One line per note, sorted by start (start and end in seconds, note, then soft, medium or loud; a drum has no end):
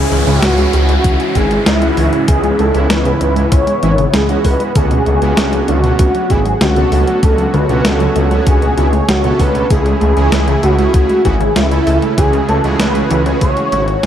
0.00 4.72 G#2 medium
0.00 4.72 C#3 medium
0.00 0.24 E3 medium
0.00 4.72 E3 medium
0.00 0.24 G#3 medium
0.00 0.23 C#4 medium
0.00 2.26 C#4 medium
0.00 0.23 E4 medium
0.00 4.72 E4 medium
0.00 0.44 G#4 loud
0.00 0.44 G#4 medium
0.00 downlifter medium
0.12 0.23 C#2 medium
0.12 0.25 E3 loud
0.12 closed hi-hat soft
0.27 0.39 C#2 medium
0.27 0.40 C#3 loud
0.27 0.85 E3 loud
0.27 0.85 G#3 medium
0.27 0.85 C#4 medium
0.27 0.85 E4 loud
0.27 closed hi-hat soft
0.42 0.66 C#2 medium
0.42 0.48 C#4 medium
0.42 0.74 F#4 loud
0.42 0.70 F#4 medium
0.42 snare loud
0.42 closed hi-hat loud
0.58 0.63 G#3 medium
0.58 closed hi-hat soft
0.73 0.97 C#2 loud
0.73 0.79 C#4 medium
0.73 1.37 F#4 loud
0.73 1.31 F#4 medium
0.73 closed hi-hat medium
0.89 1.32 E3 medium
0.89 0.98 G#3 medium
0.89 1.32 G#3 medium
0.89 1.32 C#4 medium
0.89 1.32 E4 loud
0.89 closed hi-hat soft
1.04 1.16 C#2 medium
1.04 1.18 E3 loud
1.04 kick loud
1.04 closed hi-hat medium
1.20 1.33 C#3 loud
1.20 closed hi-hat soft
1.35 1.59 G#1 loud
1.35 1.45 E3 loud
1.35 1.45 G#3 medium
1.35 1.41 C#4 medium
1.35 1.45 C#4 medium
1.35 1.45 E4 loud
1.35 1.65 G#4 loud
1.35 1.64 G#4 medium
1.35 kick medium
1.35 closed hi-hat medium
1.51 1.56 G#3 medium
1.51 closed hi-hat soft
1.66 1.90 C#2 medium
1.66 1.72 C#4 medium
1.66 2.24 E4 medium
1.66 snare loud
1.66 closed hi-hat loud
1.82 2.25 E3 medium
1.82 1.91 G#3 medium
1.82 2.25 G#3 medium
1.82 2.25 C#4 medium
1.82 2.25 F#4 loud
1.82 closed hi-hat soft
1.97 2.09 C#2 loud
1.97 2.10 E3 loud
1.97 open hi-hat medium
2.13 2.26 C#3 loud
2.13 closed hi-hat soft
2.28 2.52 C#2 medium
2.28 2.71 E3 medium
2.28 2.71 G#3 medium
2.28 7.19 B3 medium
2.28 2.33 C#4 medium
2.28 2.71 C#4 medium
2.28 2.71 E4 medium
2.28 2.57 G#4 loud
2.28 2.60 G#4 loud
2.28 kick loud
2.28 closed hi-hat loud
2.44 2.49 G#3 medium
2.44 closed hi-hat soft
2.59 2.71 C#2 medium
2.59 2.64 C#4 medium
2.59 2.91 A4 medium
2.59 2.88 A4 medium
2.59 closed hi-hat soft
2.74 2.86 C#2 medium
2.74 3.33 E3 loud
2.74 2.83 G#3 medium
2.74 3.33 G#3 medium
2.74 3.33 C#4 medium
2.74 3.33 E4 loud
2.74 closed hi-hat soft
2.90 3.14 C#2 medium
2.90 3.03 E3 loud
2.90 3.53 B4 loud
2.90 3.48 B4 loud
2.90 snare loud
2.90 closed hi-hat loud
3.05 3.19 C#3 loud
3.05 closed hi-hat soft
3.21 3.44 C#2 loud
3.21 3.26 C#4 medium
3.21 closed hi-hat medium
3.36 3.79 E3 medium
3.36 3.42 G#3 medium
3.36 3.79 G#3 medium
3.36 3.79 C#4 medium
3.36 3.79 E4 loud
3.36 closed hi-hat soft
3.52 3.64 C#2 medium
3.52 3.57 C#4 medium
3.52 4.15 C#5 loud
3.52 4.10 C#5 loud
3.52 kick loud
3.52 closed hi-hat loud
3.67 3.76 G#3 medium
3.67 closed hi-hat soft
3.83 4.06 G#1 loud
3.83 3.96 E3 loud
3.83 3.92 E3 loud
3.83 3.92 G#3 medium
3.83 3.92 C#4 medium
3.83 3.92 E4 loud
3.83 closed hi-hat medium
3.98 4.11 C#3 loud
3.98 closed hi-hat soft
4.14 4.37 C#2 medium
4.14 4.19 C#4 medium
4.14 4.46 G#4 medium
4.14 4.43 G#4 loud
4.14 snare loud
4.14 closed hi-hat loud
4.29 4.72 E3 loud
4.29 4.35 G#3 medium
4.29 4.72 G#3 medium
4.29 4.72 C#4 medium
4.29 4.72 F#4 loud
4.29 closed hi-hat soft
4.45 4.56 C#2 loud
4.45 4.50 C#4 medium
4.45 4.77 B4 loud
4.45 4.74 B4 medium
4.45 kick medium
4.45 open hi-hat medium
4.60 4.69 G#3 medium
4.60 closed hi-hat soft
4.75 4.99 C#2 loud
4.75 4.89 D3 loud
4.75 9.66 F#3 medium
4.75 14.06 A3 medium
4.75 5.18 A3 medium
4.75 5.18 B3 medium
4.75 5.18 C#4 medium
4.75 5.18 D4 medium
4.75 9.66 F#4 medium
4.75 5.18 F#4 medium
4.75 5.68 G#4 loud
4.75 5.65 G#4 loud
4.75 kick loud
4.75 closed hi-hat loud
4.91 5.04 B2 loud
4.91 closed hi-hat soft
5.06 5.18 C#2 medium
5.06 5.12 A3 medium
5.06 closed hi-hat soft
5.22 5.34 C#2 medium
5.22 5.27 F#3 medium
5.22 5.80 A3 medium
5.22 5.80 B3 medium
5.22 5.80 C#4 loud
5.22 5.80 D4 medium
5.22 5.80 F#4 loud
5.22 closed hi-hat soft
5.37 5.61 C#2 medium
5.37 5.43 A3 medium
5.37 snare loud
5.37 closed hi-hat loud
5.53 5.62 F#3 medium
5.53 closed hi-hat soft
5.68 5.92 C#2 loud
5.68 5.82 D3 loud
5.68 6.32 F#4 loud
5.68 6.26 F#4 medium
5.68 closed hi-hat medium
5.84 5.97 B2 loud
5.84 6.27 A3 medium
5.84 6.27 B3 medium
5.84 6.27 C#4 medium
5.84 6.27 D4 medium
5.84 6.27 F#4 loud
5.84 closed hi-hat soft
5.99 6.11 C#2 medium
5.99 6.05 A3 medium
5.99 kick loud
5.99 closed hi-hat loud
6.15 6.20 F#3 medium
6.15 closed hi-hat soft
6.30 6.54 G#1 loud
6.30 6.40 C#3 loud
6.30 6.40 A3 medium
6.30 6.36 A3 medium
6.30 6.40 B3 medium
6.30 6.40 D4 medium
6.30 6.40 E4 loud
6.30 6.63 G#4 loud
6.30 6.59 G#4 medium
6.30 kick medium
6.30 closed hi-hat medium
6.46 6.55 F#3 medium
6.46 closed hi-hat soft
6.61 6.85 C#2 medium
6.61 6.74 D3 loud
6.61 7.19 F#4 medium
6.61 7.25 F#4 loud
6.61 snare loud
6.61 closed hi-hat loud
6.76 6.90 B2 loud
6.76 7.19 A3 medium
6.76 7.19 B3 medium
6.76 7.19 C#4 medium
6.76 7.19 D4 medium
6.76 7.19 A4 loud
6.76 closed hi-hat soft
6.92 7.04 C#2 medium
6.92 6.97 A3 medium
6.92 open hi-hat medium
7.07 7.13 F#3 medium
7.07 closed hi-hat soft
7.23 7.46 C#2 loud
7.23 7.66 A3 medium
7.23 7.28 A3 medium
7.23 7.66 B3 medium
7.23 7.66 C#4 medium
7.23 7.66 D4 medium
7.23 7.66 F#4 medium
7.23 7.52 A4 loud
7.23 7.56 A4 loud
7.23 9.68 C#5 medium
7.23 kick loud
7.23 closed hi-hat medium
7.38 7.47 F#3 medium
7.38 closed hi-hat soft
7.54 7.66 C#2 medium
7.54 7.67 D3 loud
7.54 7.83 B4 medium
7.54 7.87 B4 medium
7.54 closed hi-hat soft
7.69 7.81 C#2 medium
7.69 7.83 B2 medium
7.69 8.28 A3 medium
7.69 8.28 B3 medium
7.69 8.28 C#4 loud
7.69 8.28 D4 medium
7.69 8.28 F#4 loud
7.69 closed hi-hat soft
7.85 8.08 C#2 medium
7.85 7.90 A3 medium
7.85 8.43 A4 medium
7.85 8.47 A4 loud
7.85 snare loud
7.85 closed hi-hat loud
8.00 8.06 F#3 medium
8.00 closed hi-hat soft
8.16 8.39 C#2 loud
8.16 8.21 A3 medium
8.16 closed hi-hat medium
8.31 8.40 F#3 medium
8.31 8.74 A3 medium
8.31 8.74 B3 medium
8.31 8.74 C#4 medium
8.31 8.74 D4 medium
8.31 8.74 F#4 loud
8.31 closed hi-hat soft
8.47 8.70 C#2 loud
8.47 8.60 D3 loud
8.47 9.05 G#4 medium
8.47 9.10 G#4 loud
8.47 kick loud
8.47 closed hi-hat medium
8.62 8.75 B2 loud
8.62 closed hi-hat soft
8.77 9.01 C#2 loud
8.77 8.87 C#3 loud
8.77 8.87 A3 medium
8.77 8.87 B3 medium
8.77 8.87 D4 medium
8.77 8.87 E4 loud
8.77 8.86 F#4 medium
8.77 closed hi-hat medium
8.93 9.02 A3 medium
8.93 closed hi-hat soft
9.08 9.32 C#2 loud
9.08 9.17 F#3 medium
9.08 9.41 F#4 loud
9.08 9.38 F#4 loud
9.08 snare loud
9.08 closed hi-hat medium
9.24 9.33 B2 loud
9.24 9.67 A3 medium
9.24 9.67 B3 medium
9.24 9.67 C#4 medium
9.24 9.67 D4 medium
9.24 9.67 A4 loud
9.24 closed hi-hat soft
9.39 9.63 C#2 loud
9.39 9.48 B2 medium
9.39 9.68 B4 medium
9.39 9.72 B4 loud
9.39 kick medium
9.39 open hi-hat medium
9.55 9.60 B2 medium
9.55 closed hi-hat soft
9.70 9.94 C#2 medium
9.70 14.06 C#3 medium
9.70 10.13 C#3 medium
9.70 14.06 E3 medium
9.70 9.76 A3 medium
9.70 10.13 A3 medium
9.70 10.13 C#4 medium
9.70 10.13 E4 medium
9.70 12.16 E4 loud
9.70 10.13 G#4 medium
9.70 10.59 G#4 loud
9.70 10.65 G#4 loud
9.70 kick loud
9.70 closed hi-hat medium
9.86 9.91 G#3 medium
9.86 closed hi-hat soft
10.01 10.13 C#2 medium
10.01 10.07 A3 medium
10.01 closed hi-hat soft
10.17 10.29 C#2 medium
10.17 10.75 C#3 loud
10.17 10.26 G#3 medium
10.17 10.75 A3 medium
10.17 10.75 C#4 medium
10.17 10.75 E4 medium
10.17 10.75 G#4 loud
10.17 closed hi-hat soft
10.32 10.56 C#2 medium
10.32 10.46 E3 loud
10.32 snare loud
10.32 closed hi-hat medium
10.48 10.61 C#3 loud
10.48 closed hi-hat soft
10.63 10.87 C#2 loud
10.63 10.69 A3 medium
10.63 11.21 F#4 loud
10.63 11.27 F#4 loud
10.63 closed hi-hat medium
10.79 11.21 C#3 medium
10.79 10.84 G#3 medium
10.79 11.21 A3 medium
10.79 11.21 C#4 medium
10.79 11.21 E4 medium
10.79 11.21 G#4 loud
10.79 closed hi-hat soft
10.94 11.06 C#2 medium
10.94 10.99 A3 medium
10.94 kick loud
10.94 closed hi-hat medium
11.09 11.18 G#3 medium
11.09 closed hi-hat soft
11.25 11.49 G#1 loud
11.25 11.35 C#3 loud
11.25 11.38 E3 loud
11.25 11.35 A3 medium
11.25 11.35 C#4 medium
11.25 11.35 E4 medium
11.25 11.34 F#4 loud
11.25 11.58 G#4 loud
11.25 11.54 G#4 loud
11.25 kick medium
11.25 closed hi-hat medium
11.41 11.54 C#3 loud
11.41 closed hi-hat soft
11.56 11.80 C#2 medium
11.56 11.61 A3 medium
11.56 12.14 E4 loud
11.56 12.19 E4 loud
11.56 snare loud
11.56 closed hi-hat medium
11.71 12.14 C#3 medium
11.71 11.77 G#3 medium
11.71 12.14 A3 medium
11.71 12.14 C#4 medium
11.71 12.14 E4 medium
11.71 12.14 A4 loud
11.71 closed hi-hat soft
11.87 11.99 C#2 loud
11.87 11.92 A3 medium
11.87 open hi-hat medium
12.02 12.11 G#3 medium
12.02 closed hi-hat soft
12.18 12.41 C#2 medium
12.18 12.61 C#3 medium
12.18 12.31 E3 loud
12.18 12.61 A3 medium
12.18 12.61 C#4 medium
12.18 12.61 E4 medium
12.18 14.06 F#4 loud
12.18 12.49 G#4 loud
12.18 12.47 G#4 loud
12.18 12.61 G#4 medium
12.18 kick loud
12.18 closed hi-hat loud
12.33 12.47 C#3 loud
12.33 closed hi-hat soft
12.49 12.61 C#2 medium
12.49 12.54 A3 medium
12.49 12.63 A4 loud
12.49 closed hi-hat soft
12.64 12.76 C#2 medium
12.64 13.22 C#3 loud
12.64 12.70 G#3 medium
12.64 13.22 A3 medium
12.64 13.22 C#4 medium
12.64 13.22 E4 medium
12.64 13.22 G#4 loud
12.64 closed hi-hat soft
12.80 13.03 C#2 medium
12.80 12.85 A3 medium
12.80 13.38 B4 loud
12.80 snare loud
12.80 closed hi-hat medium
12.95 13.04 G#3 medium
12.95 closed hi-hat soft
13.11 13.34 C#2 loud
13.11 13.24 E3 loud
13.11 closed hi-hat medium
13.26 13.39 C#3 loud
13.26 13.69 C#3 medium
13.26 13.69 A3 medium
13.26 13.69 C#4 medium
13.26 13.69 E4 medium
13.26 13.69 G#4 loud
13.26 closed hi-hat soft
13.41 13.53 C#2 medium
13.41 13.47 A3 medium
13.41 14.05 C#5 loud
13.41 14.00 C#5 loud
13.41 kick loud
13.41 closed hi-hat medium
13.57 13.62 G#3 medium
13.57 closed hi-hat soft
13.72 13.96 G#1 loud
13.72 13.82 C#3 loud
13.72 13.82 A3 medium
13.72 13.78 A3 medium
13.72 13.82 C#4 medium
13.72 13.82 E4 medium
13.72 13.82 F#4 loud
13.72 closed hi-hat medium
13.88 13.97 G#3 medium
13.88 closed hi-hat soft